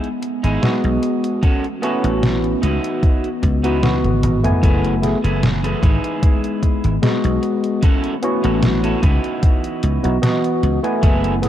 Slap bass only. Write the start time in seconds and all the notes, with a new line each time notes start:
0.44 G#1
0.84 B1
2.04 A1
2.63 C#2
3.43 C#2
4.04 G#1
4.23 G#1
4.63 F#1
5.24 F#1
5.83 G#1
6.84 G#1
7.24 B1
8.44 A1
9.03 C#2
9.83 C#2
10.04 B1
10.63 C#2
11.03 F#1